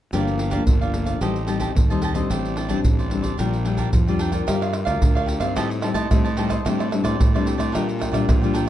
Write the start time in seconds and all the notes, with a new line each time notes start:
0.13 G1 G2 F3 A#3 D4 G4 A#4 D5 F5, pandeiro, shaker, surdo
0.28 pandeiro, shaker
0.38 G4 A#4 D5 F5, pandeiro
0.51 F3 A#3 D4 G4 A#4 D5 F5, pandeiro, shaker, surdo
0.67 G1 D3, pandeiro, shaker, surdo
0.81 A#4 D5 F5, pandeiro, shaker
0.94 F3 A#3 D4, pandeiro, shaker
1.05 A#4 D5 F5, pandeiro, shaker, surdo
1.21 A1 A2 G3 C4 D#4 G4 C5 D#5 A5, pandeiro, shaker, surdo
1.36 pandeiro, shaker
1.47 G3 C4 D#4 G4 C5 D#5 A5, pandeiro, shaker
1.60 G4 C5 D#5 A5, pandeiro, shaker, surdo
1.75 D#2 A2, pandeiro, shaker, surdo
1.90 G3 C4 D#4 C5 D#5 A5, pandeiro, shaker
2.02 G4 C5 D#5 A5, pandeiro, shaker
2.14 G3 C4 D4 C5 D#5 A5, pandeiro, shaker, surdo
2.30 A1 A2 D4 G4 C5 D5, pandeiro, shaker, surdo
2.45 pandeiro, shaker
2.56 D4 G4 C5 D5, pandeiro
2.68 G3 C4 D4 G4 C5 D5, pandeiro, shaker, surdo
2.84 A1 A2, pandeiro, shaker, surdo
2.98 G4 C5 D5, pandeiro, shaker
3.11 G3 C4 D4, pandeiro
3.22 G4 C5 D5, pandeiro, shaker, surdo
3.38 A#1 A#2 G3 D4 F4 A#4 D5 G5, pandeiro, shaker, surdo
3.53 pandeiro, shaker
3.65 G3 D4 F4 A#4 D5 G5, pandeiro
3.77 D4 A#4 D5 G5, pandeiro, shaker, surdo
3.93 F2 F3, pandeiro, shaker, surdo
4.07 G3 D4 F4 A#4 D5 G5, pandeiro, shaker
4.19 D4 A#4 D5 G5, pandeiro
4.32 D4 F4 A#4 D5 G5, pandeiro, shaker, surdo
4.47 G2 G3 G4 A#4 D5 F5, pandeiro, tamborim, shaker, surdo
4.61 A#4 D5 F5, pandeiro, tamborim, shaker
4.73 muted cavaquinho stroke, pandeiro, tamborim
4.85 D2 D4 F4 A#4 D5 F5, pandeiro, tamborim, shaker, surdo
5.01 D2 D3, pandeiro, shaker, surdo
5.15 A#4 D5 F5, pandeiro, tamborim, shaker
5.26 G4 A#4 D5 F5, pandeiro
5.40 G2 G3 C4 D#4 A#4 D5 F5, pandeiro, tamborim, shaker, surdo
5.56 A2 G4 C5 D#5 A5, pandeiro, tamborim, shaker, surdo
5.70 muted cavaquinho stroke, pandeiro, shaker
5.81 G3 C4 D#4 G4 C5 D#5 A5, pandeiro, tamborim
5.94 A2 C5 D#5 A5, pandeiro, tamborim, shaker, surdo
6.11 A2 G3 C4 D#4, pandeiro, tamborim, shaker, surdo
6.24 C5 D#5 A5, pandeiro, shaker
6.37 G3 C4 D#4 G4 C5 D#5 A5, pandeiro
6.49 C5 D#5 A5, pandeiro, tamborim, shaker, surdo
6.65 A2 G3 C4 D4 G4 C5 D5, pandeiro, tamborim, shaker, surdo
6.79 G4 C5 D5, pandeiro, tamborim, shaker
6.92 G3 C4 D4, muted cavaquinho stroke, pandeiro, tamborim
7.04 A2 G4 C5 D5, pandeiro, tamborim, shaker, surdo
7.19 A2, pandeiro, shaker, surdo
7.34 G3 C4 D4 G4 C5 D5, pandeiro, tamborim, shaker
7.46 D4 G4 C5 D5, pandeiro, shaker
7.58 A2 G4 C5 D5, pandeiro, tamborim, shaker, surdo
7.72 A#2 G3 D4 F4 A#4 D5 G5, pandeiro, tamborim, shaker, surdo
7.88 muted cavaquinho stroke, pandeiro, shaker
7.99 D4 A#4 D5 G5, pandeiro, tamborim, shaker, surdo
8.12 A#2 G3 D4 F4 A#4 D5 G5, pandeiro, tamborim, shaker, surdo
8.29 A#2 F3, pandeiro, tamborim, shaker, surdo
8.42 G3 D4 F4 A#4 D5 G5, pandeiro, shaker
8.53 D4 A#4 D5 G5, pandeiro, shaker
8.66 G5